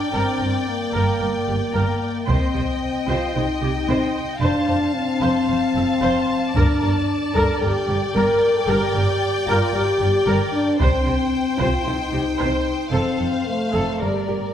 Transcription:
Already playing: french horn section D4, violin section D5 G5
0.13 double bass section G1, cello section G2, french horn section C4, viola section A#4
0.40 double bass section G1, cello section G2, viola section A#4
0.69 french horn section A#3
0.94 double bass section G1, cello section G2, viola section A#4
1.21 double bass section G1, cello section G2, viola section A#4
1.48 double bass section G1, cello section G2, viola section G4
1.74 double bass section G1, cello section G2, viola section A#4
2.27 double bass section C2, cello section C3, french horn section C4, viola section C5, violin section D#5 G5, taiko
2.55 double bass section C2, cello section C3, viola section C5
3.08 double bass section C2, cello section C3, french horn section F4, viola section C5
3.35 double bass section C2, cello section C3, french horn section D#4, viola section C5
3.62 double bass section C2, cello section C3, viola section G4
3.88 double bass section C2, cello section C3, viola section C5
4.40 double bass section F1, cello section F2, french horn section D4, viola section C5, violin section F5 A5
4.68 double bass section F1, cello section F2, viola section C5
4.94 french horn section C4
5.21 double bass section F1, cello section F2, viola section C5
5.49 double bass section F1, cello section F2, viola section C5
5.75 double bass section F1, cello section F2, viola section A4
6.02 double bass section F1, cello section F2, viola section C5
6.53 double bass section G1, cello section G2, french horn section D4, viola section A#4, violin section D5, taiko
6.82 double bass section G1, cello section G2, viola section A#4
7.35 double bass section G1, cello section G2, french horn section A4, viola section A#4, taiko
7.61 double bass section G1, cello section G2, french horn section G4, viola section A#4, violin section G5
7.88 double bass section G1, cello section G2, viola section G4
8.14 double bass section G1, cello section G2, french horn section A#4, viola section A#4
8.56 french horn section A4
8.68 double bass section G1, cello section G2, french horn section G4, viola section A#4
8.95 double bass section G1, cello section G2, viola section A#4
9.46 double bass section G1, cello section G2, french horn section F4, viola section A#4
9.73 double bass section G1, cello section G2, french horn section G4, viola section A#4
10.00 double bass section G1, cello section G2, viola section G4
10.27 double bass section G1, cello section G2, viola section A#4
10.52 french horn section D4
10.79 double bass section C2, cello section C3, french horn section C4, violin section C5 G5, viola section C5, taiko
11.06 double bass section C2, cello section C3, viola section C5
11.58 double bass section C2, cello section C3, french horn section F4, viola section C5, taiko
11.85 double bass section C2, cello section C3, french horn section D#4, viola section C5
12.13 double bass section C2, cello section C3, viola section G4
12.39 double bass section C2, cello section C3, viola section C5
12.91 double bass section F1, cello section F2, french horn section C4, viola section A4, violin section F5
13.18 double bass section F1, cello section F2, viola section A4
13.46 french horn section A3
13.73 double bass section F1, cello section F2, viola section A4
14.01 double bass section G1, cello section G2, french horn section G3, viola section A#4, violin section A#4 D5
14.28 double bass section G1, cello section G2, viola section G4

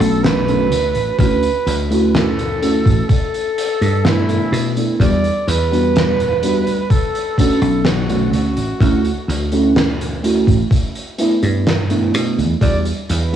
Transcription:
Already playing: fm electric piano A3 C#4 D4 F#4, flugelhorn A4
0.00 slap bass B1, closed hi-hat
0.24 flugelhorn B4, snare, closed hi-hat
0.48 fm electric piano A3 C#4 D4 F#4, closed hi-hat
0.71 slap bass D2, closed hi-hat
0.95 slap bass A1, closed hi-hat
1.19 slap bass D2, fm electric piano A3 C#4 E4 F#4, flugelhorn B4, kick, closed hi-hat
1.43 closed hi-hat
1.67 slap bass D2, closed hi-hat
1.90 fm electric piano A3 C#4 E4 F#4, closed hi-hat
2.07 flugelhorn B4
2.15 flugelhorn A4, snare, closed hi-hat
2.39 closed hi-hat
2.62 fm electric piano A3 C#4 E4 F#4, closed hi-hat
2.86 slap bass A1, kick, closed hi-hat
3.09 flugelhorn A4, kick, closed hi-hat
3.34 closed hi-hat
3.58 closed hi-hat
3.81 slap bass G2, closed hi-hat
4.04 fm electric piano A3 B3 D4 E4, flugelhorn E4, snare, closed hi-hat
4.28 fm electric piano A3 B3 D4 E4, closed hi-hat
4.52 slap bass B2, closed hi-hat
4.76 fm electric piano A3 B3 D4 E4, closed hi-hat
5.00 slap bass E2, fm electric piano G3 B3 D4 F#4, flugelhorn D5, kick, closed hi-hat
5.24 closed hi-hat
5.48 slap bass E2, flugelhorn B4, closed hi-hat
5.71 fm electric piano G3 B3 D4 F#4, closed hi-hat
5.95 snare, closed hi-hat
6.20 closed hi-hat
6.42 fm electric piano G3 B3 D4 F#4, closed hi-hat
6.67 slap bass D2, closed hi-hat
6.90 flugelhorn A4, kick, closed hi-hat
7.15 closed hi-hat
7.38 fm electric piano A3 C#4 D4 F#4, flugelhorn A4, kick, closed hi-hat
7.62 slap bass B1, closed hi-hat
7.85 flugelhorn F#4, snare, closed hi-hat
8.09 fm electric piano A3 C#4 D4 F#4, closed hi-hat
8.33 slap bass D2, flugelhorn F#4, closed hi-hat
8.57 slap bass A1, closed hi-hat
8.80 slap bass D2, fm electric piano A3 C#4 E4 F#4, kick, closed hi-hat
9.05 closed hi-hat
9.28 slap bass D2, closed hi-hat
9.52 fm electric piano A3 C#4 E4 F#4, closed hi-hat
9.76 snare, closed hi-hat
10.01 closed hi-hat
10.23 fm electric piano A3 C#4 E4 F#4, closed hi-hat
10.47 slap bass A1, kick, closed hi-hat
10.71 kick, closed hi-hat
10.95 closed hi-hat
11.18 fm electric piano A3 B3 D4 E4, closed hi-hat
11.43 slap bass G2, closed hi-hat
11.67 snare, closed hi-hat
11.90 fm electric piano A3 B3 D4 E4, closed hi-hat
12.14 slap bass B2, closed hi-hat
12.38 slap bass E2, closed hi-hat
12.61 slap bass E2, fm electric piano G3 B3 D4 F#4, flugelhorn D5, kick, closed hi-hat
12.85 closed hi-hat
13.09 slap bass E2, flugelhorn B4, closed hi-hat
13.32 fm electric piano G3

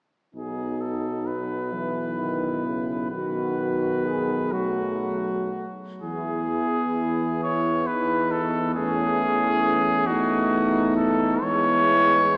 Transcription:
0.34 tuba B1, trombone F#3, euphonium B3, french horn section D#4, cornet G#4
0.81 cornet A4
1.27 cornet B4
1.73 trombone E3, french horn section E4
2.20 trombone D#3
2.67 trombone C#3
3.10 trombone D#3, euphonium B3, french horn section F#4, cornet B4
3.58 french horn section F#4
4.04 french horn section G#4
4.52 trombone F#3, euphonium A3, cornet F#4, french horn section F#4
6.01 tuba E2, trombone E3, euphonium B3, french horn section E4, cornet G#4
7.43 cornet C#5
7.87 french horn section D#4, cornet B4
8.31 cornet A4
8.75 trombone E3, euphonium A3, french horn section C#4, cornet G#4
10.07 trombone A3, euphonium B3, french horn section D#4, cornet F#4
10.96 cornet A4
11.42 tuba E2, trombone G#3, euphonium B3, french horn section E4, cornet C#5

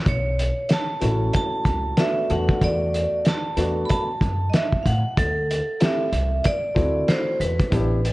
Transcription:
0.06 upright bass B1, vibraphone C#5, kick, closed hi-hat
0.39 closed hi-hat
0.69 vibraphone A5, snare, closed hi-hat
1.00 upright bass A1, upright piano A3 C#4 E4 F#4, closed hi-hat
1.33 vibraphone A5, kick, closed hi-hat
1.65 upright bass C#2, kick, closed hi-hat
1.97 upright piano A3 B3 D4 F#4, vibraphone E5, snare, closed hi-hat
2.30 upright bass E2, upright piano A3 B3 D4 F#4, vibraphone F#5, closed hi-hat
2.49 kick
2.61 upright bass E2, vibraphone D5, kick, closed hi-hat
2.94 closed hi-hat
3.25 vibraphone A5, snare, closed hi-hat
3.57 upright bass E2, upright piano A3 B3 D4 F#4, closed hi-hat
3.85 vibraphone B5, closed hi-hat
3.90 vibraphone A5, kick
4.21 upright bass F#2, kick, closed hi-hat
4.50 vibraphone D#5, closed hi-hat
4.54 vibraphone E5, snare
4.72 kick
4.83 upright bass A2, vibraphone F5 F#5, kick, closed hi-hat
5.17 upright bass D2, vibraphone A4, kick, closed hi-hat
5.51 closed hi-hat
5.80 upright piano A3 C4 E4 G4, vibraphone E5, snare, closed hi-hat
6.13 upright bass C2, closed hi-hat
6.44 vibraphone D5, kick, closed hi-hat
6.75 upright bass D2, upright piano A3 C4 E4 F#4, kick, closed hi-hat
7.08 vibraphone C5, snare, closed hi-hat
7.40 upright bass E2, vibraphone B4, closed hi-hat
7.60 kick, closed hi-hat
7.71 upright bass A1, upright piano B3 D4 E4 G4, kick, closed hi-hat
8.05 closed hi-hat

